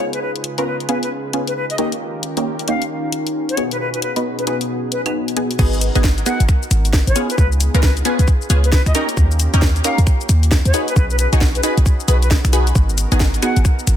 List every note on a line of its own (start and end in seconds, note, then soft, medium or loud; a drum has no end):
0.00 1.77 C#3 medium
0.00 0.12 B3 medium
0.00 0.12 C#4 medium
0.00 2.36 C#4 medium
0.00 1.75 D#4 medium
0.00 0.12 F4 medium
0.00 1.77 F4 medium
0.00 0.12 G#4 medium
0.00 1.77 G#4 medium
0.00 1.78 G#4 medium
0.00 1.77 B4 medium
0.00 2.51 D#5 medium
0.13 0.19 B4 medium
0.13 closed hi-hat medium
0.21 0.31 B4 medium
0.36 closed hi-hat medium
0.44 closed hi-hat loud
0.58 0.66 B3 medium
0.58 0.66 C#4 medium
0.58 0.66 F4 medium
0.58 0.66 A#4 loud
0.58 0.63 B4 medium
0.58 closed hi-hat medium
0.66 0.75 B4 medium
0.80 4.40 F5 medium
0.80 closed hi-hat soft
0.89 1.02 B3 medium
0.89 1.02 C#4 medium
0.89 1.02 F4 medium
0.89 1.02 G#4 medium
0.89 0.98 B4 medium
0.89 closed hi-hat loud
1.03 1.08 B4 medium
1.03 closed hi-hat medium
1.33 1.42 B3 medium
1.33 1.42 C#4 medium
1.33 1.42 F4 medium
1.33 1.42 G#4 medium
1.33 closed hi-hat loud
1.47 1.53 B4 medium
1.47 closed hi-hat medium
1.56 1.65 B4 medium
1.70 1.75 D#5 medium
1.70 closed hi-hat medium
1.78 3.56 D#3 medium
1.78 1.91 A#3 loud
1.78 5.55 C#4 medium
1.78 1.91 C#4 medium
1.78 4.36 D#4 medium
1.78 1.91 D#4 medium
1.78 3.56 F4 medium
1.78 3.56 G4 medium
1.78 1.91 G4 loud
1.78 3.56 A#4 medium
1.78 1.87 D#5 medium
1.78 closed hi-hat loud
1.92 closed hi-hat medium
2.23 closed hi-hat loud
2.37 2.45 A#3 loud
2.37 2.45 C#4 medium
2.37 2.45 D#4 medium
2.37 2.45 G4 loud
2.37 closed hi-hat medium
2.41 4.21 A#4 medium
2.59 closed hi-hat soft
2.68 2.81 A#3 medium
2.68 2.81 C#4 medium
2.68 2.81 D#4 medium
2.68 2.81 G4 loud
2.68 2.82 F5 medium
2.68 closed hi-hat loud
2.82 closed hi-hat medium
3.12 closed hi-hat loud
3.27 closed hi-hat medium
3.49 3.63 C#5 medium
3.49 closed hi-hat medium
3.57 5.57 B2 medium
3.57 3.70 B3 medium
3.57 5.59 B3 medium
3.57 5.57 D#4 medium
3.57 3.70 D#4 medium
3.57 5.57 F#4 medium
3.57 3.70 F#4 medium
3.57 3.70 G#4 medium
3.57 5.57 G#4 medium
3.57 closed hi-hat loud
3.71 5.59 F#4 medium
3.71 3.77 B4 medium
3.71 closed hi-hat medium
3.80 3.89 B4 medium
3.94 3.99 B4 medium
3.94 closed hi-hat medium
4.02 4.11 B4 medium
4.02 closed hi-hat loud
4.16 4.24 B3 medium
4.16 4.24 D#4 medium
4.16 4.24 F#4 medium
4.16 4.24 B4 loud
4.16 closed hi-hat medium
4.39 4.44 B4 medium
4.39 closed hi-hat soft
4.44 4.60 B3 medium
4.44 4.60 D#4 medium
4.44 4.60 F#4 medium
4.44 4.60 G#4 medium
4.44 4.56 B4 medium
4.44 5.59 C#5 medium
4.44 closed hi-hat loud
4.48 5.59 D#5 medium
4.61 closed hi-hat medium
4.92 5.01 B4 medium
4.92 closed hi-hat loud
5.06 5.35 B3 medium
5.06 5.35 D#4 medium
5.06 5.35 F#4 medium
5.06 5.35 G#4 medium
5.06 5.11 B4 medium
5.06 closed hi-hat medium
5.06 claves medium
5.28 closed hi-hat medium
5.36 5.49 B3 medium
5.36 5.49 D#4 medium
5.36 5.49 F#4 medium
5.36 5.49 G#4 loud
5.36 closed hi-hat loud
5.51 closed hi-hat medium
5.59 5.90 G#1 loud
5.59 5.90 B3 loud
5.59 8.92 B3 medium
5.59 5.90 D#4 medium
5.59 8.92 D#4 medium
5.59 5.90 F#4 medium
5.59 7.14 F#4 medium
5.59 5.90 G#4 loud
5.59 7.14 A#4 medium
5.59 kick loud
5.59 crash loud
5.59 shaker soft
5.73 shaker soft
5.81 closed hi-hat loud
5.81 shaker medium
5.95 6.23 G#1 medium
5.95 6.03 B3 loud
5.95 6.03 D#4 medium
5.95 6.03 F#4 medium
5.95 6.03 G#4 loud
5.95 closed hi-hat medium
5.95 shaker soft
6.04 kick loud
6.04 snare loud
6.04 shaker soft
6.18 closed hi-hat soft
6.18 shaker soft
6.26 6.39 B3 medium
6.26 6.39 D#4 medium
6.26 6.39 F#4 medium
6.26 6.39 G#4 loud
6.26 6.41 F#5 medium
6.26 finger snap medium
6.26 closed hi-hat loud
6.26 shaker medium
6.40 6.46 G#1 medium
6.40 closed hi-hat medium
6.40 shaker soft
6.49 finger snap medium
6.49 kick loud
6.49 shaker soft
6.63 shaker soft
6.71 7.02 G#1 medium
6.71 finger snap medium
6.71 closed hi-hat loud
6.71 shaker medium
6.85 closed hi-hat medium
6.85 shaker soft
6.93 kick loud
6.93 snare loud
6.93 shaker soft
7.07 7.13 G#1 medium
7.07 7.21 C#5 medium
7.07 closed hi-hat medium
7.07 shaker soft
7.16 7.29 B3 medium
7.16 7.29 C#4 medium
7.16 7.29 F4 medium
7.16 10.70 F4 medium
7.16 8.93 G#4 medium
7.16 7.29 G#4 medium
7.16 closed hi-hat loud
7.16 shaker medium
7.30 7.35 B4 medium
7.30 closed hi-hat medium
7.30 shaker soft
7.38 7.69 C#2 loud
7.38 7.47 B4 medium
7.38 kick loud
7.38 shaker soft
7.52 shaker soft
7.60 closed hi-hat loud
7.60 shaker medium
7.74 8.02 C#2 medium
7.74 7.82 B3 medium
7.74 7.82 C#4 medium
7.74 7.82 F4 medium
7.74 7.82 A#4 loud
7.74 7.80 B4 medium
7.74 closed hi-hat medium
7.74 shaker soft
7.83 7.92 B4 medium
7.83 kick loud
7.83 snare loud
7.83 shaker soft
7.97 closed hi-hat soft
7.97 shaker soft
8.05 8.18 B3 medium
8.05 8.18 C#4 medium
8.05 8.18 F4 medium
8.05 8.18 G#4 medium
8.05 8.14 B4 medium
8.05 closed hi-hat loud
8.05 shaker medium
8.19 8.25 C#2 medium
8.19 8.25 B4 medium
8.19 closed hi-hat medium
8.19 shaker soft
8.28 kick loud
8.28 shaker soft
8.42 shaker soft
8.50 8.81 C#2 medium
8.50 8.58 B3 medium
8.50 8.58 C#4 medium
8.50 8.58 F4 medium
8.50 8.58 G#4 medium
8.50 closed hi-hat loud
8.50 shaker medium
8.64 8.69 B4 medium
8.64 closed hi-hat medium
8.64 shaker soft
8.72 8.81 B4 medium
8.72 kick loud
8.72 snare loud
8.72 closed hi-hat medium
8.72 shaker soft
8.86 8.93 C#2 medium
8.86 8.92 D#5 medium
8.86 finger snap medium
8.86 closed hi-hat medium
8.86 shaker soft
8.95 10.72 A#3 medium
8.95 10.72 C#4 medium
8.95 9.08 C#4 loud
8.95 9.08 D#4 medium
8.95 10.72 G4 medium
8.95 9.08 G4 medium
8.95 9.08 A#4 loud
8.95 9.04 D#5 medium
8.95 closed hi-hat loud
8.95 shaker medium
9.09 closed hi-hat medium
9.09 shaker soft
9.17 9.48 D#2 loud
9.17 kick loud
9.17 shaker soft
9.31 shaker soft
9.40 closed hi-hat loud
9.40 shaker medium
9.54 9.81 D#2 medium
9.54 9.61 C#4 loud
9.54 9.61 D#4 medium
9.54 9.61 G4 medium
9.54 9.61 A#4 loud
9.54 closed hi-hat medium
9.54 shaker soft
9.62 kick loud
9.62 snare loud
9.62 shaker soft
9.76 closed hi-hat soft
9.76 shaker soft
9.84 9.97 C#4 loud
9.84 9.97 D#4 medium
9.84 9.97 G4 medium
9.84 9.97 A#4 loud
9.84 9.99 F5 medium
9.84 finger snap medium
9.84 closed hi-hat loud
9.84 shaker medium
9.98 10.04 D#2 medium
9.98 closed hi-hat medium
9.98 shaker soft
10.07 finger snap medium
10.07 kick loud
10.07 shaker soft
10.21 shaker soft
10.29 10.60 D#2 medium
10.29 finger snap medium
10.29 closed hi-hat loud
10.29 shaker medium
10.43 closed hi-hat medium
10.43 shaker soft
10.51 kick loud
10.51 snare loud
10.51 shaker soft
10.65 10.72 D#2 medium
10.65 10.80 C#5 medium
10.65 closed hi-hat medium
10.65 shaker soft
10.74 12.73 C#4 medium
10.74 10.87 D#4 medium
10.74 13.97 D#4 medium
10.74 10.87 F#4 medium
10.74 13.97 F#4 medium
10.74 10.87 G#4 medium
10.74 12.73 G#4 medium
10.74 10.87 B4 medium
10.74 closed hi-hat loud
10.74 shaker medium
10.88 10.93 B4 medium
10.88 closed hi-hat medium
10.88 shaker soft
10.96 11.27 B1 loud
10.96 11.05 B4 medium
10.96 kick loud
10.96 shaker soft
11.10 11.16 B4 medium
11.10 shaker soft
11.19 11.28 B4 medium
11.19 closed hi-hat loud
11.19 shaker medium
11.33 11.60 B1 medium
11.33 11.40 D#4 medium
11.33 11.40 F#4 medium
11.33 11.40 G#4 medium
11.33 11.40 C#5 loud
11.33 closed hi-hat medium
11.33 shaker soft
11.41 kick loud
11.41 snare loud
11.41 shaker soft
11.55 11.60 B4 medium
11.55 closed hi-hat soft
11.55 shaker soft
11.63 11.76 D#4 medium
11.63 11.76 F#4 medium
11.63 11.76 G#4 medium
11.63 11.72 B4 medium
11.63 11.76 B4 loud
11.63 closed hi-hat loud
11.63 shaker medium
11.77 11.84 B1 medium
11.77 closed hi-hat medium
11.77 shaker soft
11.86 kick loud
11.86 shaker soft
12.00 shaker soft
12.08 12.39 B1 loud
12.08 12.16 D#4 medium
12.08 12.16 F#4 medium
12.08 12.16 G#4 medium
12.08 12.17 B4 medium
12.08 12.16 B4 medium
12.08 closed hi-hat loud
12.08 shaker medium
12.22 12.28 B4 medium
12.22 closed hi-hat medium
12.22 shaker soft
12.31 kick loud
12.31 snare loud
12.31 closed hi-hat medium
12.31 shaker soft
12.44 12.72 B1 medium
12.44 finger snap medium
12.44 closed hi-hat medium
12.44 shaker soft
12.53 12.66 D#4 loud
12.53 12.66 F#4 medium
12.53 12.66 G#4 medium
12.53 12.66 B4 loud
12.53 closed hi-hat loud
12.53 shaker medium
12.67 closed hi-hat medium
12.67 shaker soft
12.75 13.06 G#1 loud
12.75 13.97 B3 medium
12.75 13.97 A#4 medium
12.75 kick loud
12.75 shaker soft
12.89 shaker soft
12.98 closed hi-hat loud
12.98 shaker medium
13.12 13.39 G#1 medium
13.12 13.19 B3 loud
13.12 13.19 D#4 medium
13.12 13.19 F#4 medium
13.12 13.19 G#4 loud
13.12 closed hi-hat medium
13.12 shaker soft
13.20 kick loud
13.20 snare loud
13.20 shaker soft
13.34 closed hi-hat soft
13.34 shaker soft
13.42 13.55 B3 medium
13.42 13.55 D#4 medium
13.42 13.55 F#4 medium
13.42 13.55 G#4 loud
13.42 13.57 F#5 medium
13.42 finger snap medium
13.42 closed hi-hat loud
13.42 shaker medium
13.56 13.63 G#1 medium
13.56 closed hi-hat medium
13.56 shaker soft
13.65 finger snap medium
13.65 kick loud
13.65 shaker soft
13.79 shaker soft
13.87 13.97 G#1 medium
13.87 finger snap soft
13.87 closed hi-hat loud
13.87 shaker medium